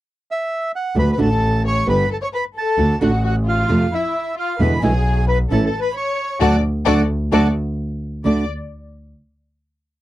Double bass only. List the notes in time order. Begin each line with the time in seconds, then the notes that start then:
0.96 D2
1.18 A1
1.87 G1
2.78 D2
3.00 A1
3.69 F2
4.60 E2
4.82 B1
5.50 A1
6.41 D2
6.86 D2
7.32 D2
8.25 D2